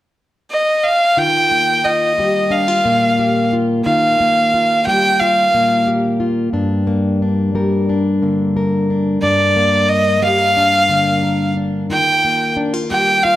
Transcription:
0.50 fiddle D#5
0.84 fiddle F5
1.17 steel-string acoustic guitar D#3 F4, fiddle G5
1.51 steel-string acoustic guitar A#3
1.84 steel-string acoustic guitar F4, fiddle D#5
2.18 steel-string acoustic guitar G3 G4
2.50 steel-string acoustic guitar D4, fiddle F5
2.68 steel-string acoustic guitar F4
2.85 steel-string acoustic guitar A#2 A#3
3.19 steel-string acoustic guitar G4
3.53 steel-string acoustic guitar F4
3.84 steel-string acoustic guitar D#3 F4, fiddle F5
4.20 steel-string acoustic guitar A#3
4.54 steel-string acoustic guitar F4
4.86 steel-string acoustic guitar G3 G4, fiddle G5
5.19 steel-string acoustic guitar F4, fiddle F5
5.54 steel-string acoustic guitar A#2 A#3
5.87 steel-string acoustic guitar G4
6.20 steel-string acoustic guitar F4
6.53 steel-string acoustic guitar G2 D4
6.87 steel-string acoustic guitar A#3
7.22 steel-string acoustic guitar D4
7.55 steel-string acoustic guitar G3 A#4
7.89 steel-string acoustic guitar D4
8.22 steel-string acoustic guitar D3 A#3
8.57 steel-string acoustic guitar A#4
8.90 steel-string acoustic guitar D4
9.22 steel-string acoustic guitar G2 D4, fiddle D5
9.56 steel-string acoustic guitar A#3
9.88 fiddle D#5
10.22 steel-string acoustic guitar G3 G4, fiddle F5
10.39 steel-string acoustic guitar A#4
10.57 steel-string acoustic guitar D4
10.89 steel-string acoustic guitar D3 A#3
11.23 steel-string acoustic guitar A#4
11.57 steel-string acoustic guitar D4
11.89 steel-string acoustic guitar D#3 F4, fiddle G5
12.25 steel-string acoustic guitar A#3
12.57 steel-string acoustic guitar D4
12.74 steel-string acoustic guitar F4
12.90 steel-string acoustic guitar G3 G4, fiddle G5
13.23 steel-string acoustic guitar F4, fiddle F5

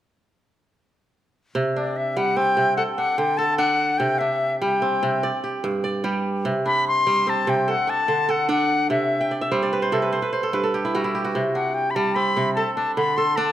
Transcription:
1.55 kora C3
1.75 kora D4, flute D5
1.97 flute E5
2.17 kora G3, flute F#5
2.36 kora C4, flute G5
2.57 kora C3
2.77 kora A4, flute F#5
2.97 kora D4, flute F#5
3.18 kora D3, flute G5
3.37 kora A4, flute A5
3.58 kora D4, flute F#5
3.98 kora C3, flute G5
4.19 kora D4, flute E5
4.60 kora G3, flute G5
4.82 kora C4
5.03 kora C3
5.23 kora D5
5.44 kora G4
5.64 kora G2
5.84 kora D5
6.04 kora G3 G4
6.45 kora C3
6.66 kora D4, flute B5
6.88 flute C6
7.07 kora G3
7.27 kora C4, flute A5
7.47 kora C3, flute G5
7.68 kora A4, flute F#5
7.87 kora D4, flute A5
8.08 kora D3
8.29 kora A4, flute F#5
8.49 kora D4, flute F#5
8.90 kora C3, flute E5
9.21 kora G5
9.31 kora D5
9.41 kora E5
9.52 kora G3 C5
9.62 kora D5
9.73 kora B4
9.82 kora C5
9.92 kora C3 A4
10.02 kora B4
10.13 kora C5
10.22 kora B4
10.33 kora C5
10.43 kora A4
10.53 kora G2 B4
10.63 kora A4
10.74 kora G4
10.85 kora E4
10.95 kora G3 F#4
11.04 kora E4
11.15 kora G4
11.24 kora F#4
11.35 kora C3
11.54 kora D4, flute F#5
11.74 flute G5
11.91 flute B5
11.95 kora G3, flute A5
12.15 kora C4, flute B5
12.37 kora C3
12.55 kora A4, flute A5
12.75 kora D4, flute A5
12.96 kora D3, flute B5
13.17 kora A4, flute C6
13.36 kora D4, flute A5

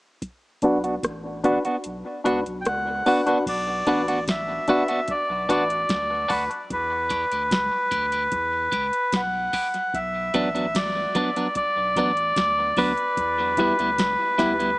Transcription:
0.22 kick, closed hi-hat
0.62 sub bass B1, clean electric guitar B3 D4 F#4, synth stab D4 F#4 B4, kick, closed hi-hat
0.84 clean electric guitar B3 D4 F#4, closed hi-hat
1.03 sub bass A1, kick, cross-stick, closed hi-hat
1.44 clean electric guitar B3 D4 F#4, synth stab D4 F#4 B4, kick, closed hi-hat
1.65 clean electric guitar B3 D4 F#4, closed hi-hat
1.84 sub bass B1, closed hi-hat
2.24 sub bass C#2, clean electric guitar B3 D4 F#4, synth stab D4 F#4 B4, closed hi-hat
2.46 sub bass B1, closed hi-hat
2.61 melodica G5
2.65 sub bass C#2, melodica F#5, cross-stick, closed hi-hat
3.06 clean electric guitar B3 D4 F#4, synth stab D4 F#4 B4, open hi-hat
3.26 clean electric guitar B3 D4 F#4, synth stab D4 F#4 B4, closed hi-hat
3.46 sub bass B1, melodica D5, kick, closed hi-hat, crash
3.87 sub bass A1, clean electric guitar B3 D4 F#4, synth stab D4 F#4 B4, kick, closed hi-hat
4.08 clean electric guitar B3 D4 F#4, closed hi-hat
4.28 melodica E5, kick, snare, closed hi-hat
4.68 clean electric guitar B3 D4 F#4, synth stab D4 F#4 B4, kick, closed hi-hat
4.88 clean electric guitar B3 D4 F#4, closed hi-hat
5.08 melodica D5, kick, closed hi-hat
5.29 sub bass B1
5.49 sub bass A1, clean electric guitar B3 D4 F#4, synth stab D4 F#4 B4, melodica D5, kick, closed hi-hat
5.70 closed hi-hat
5.89 sub bass D2, kick, snare, closed hi-hat
6.28 sub bass D2, clean electric guitar B3 D4 F#4, synth stab D4 F#4 B4, melodica B4, kick, open hi-hat
6.50 synth stab D4 F#4 B4, closed hi-hat
6.70 sub bass E2, melodica B4, kick, closed hi-hat
7.09 clean electric guitar B3 E4 G4, kick, closed hi-hat
7.32 sub bass D2, clean electric guitar B3 E4 G4, closed hi-hat
7.51 sub bass C#2, kick, snare, closed hi-hat
7.91 sub bass D2, clean electric guitar B3 E4 G4, kick, closed hi-hat
8.12 clean electric guitar B3 E4 G4, closed hi-hat
8.32 sub bass E2, kick, closed hi-hat
8.72 sub bass C#2, clean electric guitar B3 E4 G4, kick, closed hi-hat
8.93 closed hi-hat
9.12 sub bass B1, melodica F#5, kick, snare, closed hi-hat
9.53 clean electric guitar B3 E4 G4, kick, open hi-hat
9.74 closed hi-hat
9.94 sub bass B1, melodica E5, kick, closed hi-hat
10.34 sub bass A1, clean electric guitar F#3 B3 D4, kick, closed hi-hat
10.55 clean electric guitar F#3 B3 D4, closed hi-hat
10.75 melodica D5, kick, snare, closed hi-hat
11.15 clean electric guitar F#3 B3 D4, kick, closed hi-hat
11.36 clean electric guitar F#3 B3 D4, closed hi-hat
11.55 melodica D5, kick, closed hi-hat
11.77 sub bass B1
11.96 sub bass A1, clean electric guitar F#3 B3 D4, kick, closed hi-hat
12.17 closed hi-hat
12.36 sub bass D2, kick, snare, closed hi-hat
12.77 sub bass D2, clean electric guitar F#3 B3 D4, melodica B4, kick, open hi-hat
12.97 closed hi-hat
13.17 sub bass E2, kick, closed hi-hat
13.57 clean electric guitar G3 B3 E4, synth stab E4 G4 B4, kick, closed hi-hat
13.79 sub bass D2, clean electric guitar G3 B3 E4, closed hi-hat
13.98 sub bass C#2, kick, snare, closed hi-hat
14.38 sub bass D2, clean electric guitar G3 B3 E4, synth stab E4 G4 B4, kick, snare, closed hi-hat
14.59 clean electric guitar G3 B3 E4, closed hi-hat

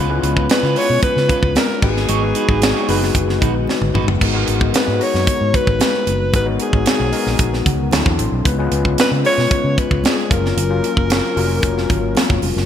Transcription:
Already playing: fingered electric bass C#2
0.09 tine electric piano G#3 B3 C#4 E4 B4
0.16 tine electric piano F4
0.22 fingered electric bass C#2, clean electric guitar C#4 F4 B4, closed hi-hat, muted conga
0.36 clean electric guitar C#4 F4 B4, kick
0.50 alto saxophone B4, snare, closed hi-hat, high conga
0.63 fingered electric bass C#3, clean electric guitar C#4 F4 B4
0.75 tine electric piano G#3 B3 C#4 F4 B4, clean electric guitar C#4 F4 B4, alto saxophone C#5, open hi-hat
0.90 fingered electric bass B2
1.03 alto saxophone B4, muted fingered electric bass stroke, kick, closed hi-hat, muted conga
1.16 fingered electric bass C#3, muted clean electric guitar stroke, snare
1.28 clean electric guitar C#4 F4 B4, kick, closed hi-hat
1.42 fingered electric bass C#2, muted clean electric guitar stroke, kick
1.55 alto saxophone A#4, muted clean electric guitar stroke, snare, closed hi-hat, high conga
1.69 muted clean electric guitar stroke
1.82 fingered electric bass G#1, tine electric piano G#3 B3 D#4 F#4 B4, alto saxophone G#4, kick, crash, high conga
1.95 muted clean electric guitar stroke, snare
2.08 fingered electric bass G#1, clean electric guitar D#4 F#4 C#5, closed hi-hat, muted conga
2.21 tine electric piano G#3 B3 D#4 F#4 B4
2.35 clean electric guitar D#4 F#4 B4, closed hi-hat, muted conga
2.48 fingered electric bass G#1, clean electric guitar D#4 F#4 B4, kick
2.62 muted clean electric guitar stroke, snare, closed hi-hat, high conga
2.75 clean electric guitar D#4 F#4 C#5
2.88 fingered electric bass F#1, tine electric piano G#3 B3 D#4 F#4 B4, clean electric guitar D#4 F#4 B4, open hi-hat
3.01 muted clean electric guitar stroke, snare
3.15 fingered electric bass F#1, kick, closed hi-hat, muted conga, low conga
3.28 muted clean electric guitar stroke, snare
3.41 fingered electric bass A#1, clean electric guitar D#4 F#4 B4, kick, closed hi-hat, low conga
3.55 muted clean electric guitar stroke
3.67 snare, high conga
3.81 fingered electric bass G#1, muted clean electric guitar stroke, high tom
3.94 fingered electric bass G#1, clean electric guitar D#4 F#4 B4, mid tom, high conga
4.08 fingered electric bass F#1, muted clean electric guitar stroke, floor tom
4.21 fingered electric bass G#1, tine electric piano G#3 B3 D#4 F#4 A#4, kick, crash, muted conga
4.34 tine electric piano G#3 B3 D#4 F#4 A#4
4.48 fingered electric bass G#1, closed hi-hat
4.61 kick
4.74 alto saxophone B4, snare, closed hi-hat, high conga
4.88 fingered electric bass G#2
5.00 tine electric piano G#3 B3 D#4 F#4 A#5, alto saxophone C#5, open hi-hat
5.14 fingered electric bass F#2, snare
5.27 muted fingered electric bass stroke, kick, closed hi-hat, muted conga
5.41 fingered electric bass G#2
5.54 alto saxophone B4, kick, closed hi-hat
5.67 fingered electric bass G#1, kick
5.80 snare, closed hi-hat, high conga
6.07 fingered electric bass F#1, closed hi-hat, high conga
6.33 fingered electric bass G#1, tine electric piano G#3 B3 D#4 F#4 A#4, alto saxophone B4, kick, closed hi-hat, muted conga
6.45 tine electric piano G#3 B3 D#4 F#4 C#5
6.60 alto saxophone G#4, closed hi-hat
6.73 fingered electric bass G#1, kick
6.86 snare, closed hi-hat, high conga
7.00 fingered electric bass B1
7.12 tine electric piano G#3 B3 D#4 F#4 A#4, open hi-hat
7.26 fingered electric bass A#1, snare
7.39 fingered electric bass A#1, kick, closed hi-hat, muted conga
7.54 snare
7.66 fingered electric bass C#2, tine electric piano F#5, kick, closed hi-hat, low conga
7.91 fingered electric bass D2, tine electric piano F#3 C4 D4 E4 A4 A5, snare, closed hi-hat, high conga
8.06 fingered electric bass E2, kick
8.18 fingered electric bass A1, tine electric piano C6, closed hi-hat, high conga
8.32 fingered electric bass B1
8.44 fingered electric bass C#2, tine electric piano G#3 B3 C#4 F4 B4, kick, closed hi-hat, muted conga
8.58 tine electric piano G#3 B3 C#4 F4 B4
8.72 fingered electric bass C#2, closed hi-hat
8.85 kick
8.98 alto saxophone B4, muted fingered electric bass stroke, snare, closed hi-hat, high conga
9.11 fingered electric bass C#3
9.24 tine electric piano G#3 B3 C#4 F4 B4, alto saxophone C#5, open hi-hat
9.38 fingered electric bass B2, snare
9.51 kick, closed hi-hat, muted conga
9.64 fingered electric bass C#3
9.78 alto saxophone B4, kick, closed hi-hat
9.91 fingered electric bass C#2, kick
10.04 alto saxophone G#4, snare, closed hi-hat, high conga
10.29 fingered electric bass F#1, tine electric piano F#3 A#3 C#4 F4 A#4, alto saxophone A#4, kick, closed hi-hat, high conga
10.46 snare
10.57 fingered electric bass F#1, closed hi-hat, muted conga
10.69 tine electric piano F#3 A#3 C#4 F4 A#4
10.84 closed hi-hat, muted conga
10.97 fingered electric bass F#1, kick
11.10 snare, closed hi-hat, high conga
11.36 fingered electric bass F1, tine electric piano F#3 A#3 C#4 F4 A#4, open hi-hat
11.63 fingered electric bass F1, kick, closed hi-hat, muted conga
11.78 snare
11.89 fingered electric bass G#1, kick, closed hi-hat, low conga
12.15 snare, closed hi-hat, high conga
12.30 fingered electric bass F#1, kick
12.42 fingered electric bass F1, open hi-hat, high conga
12.56 fingered electric bass F#1, snare

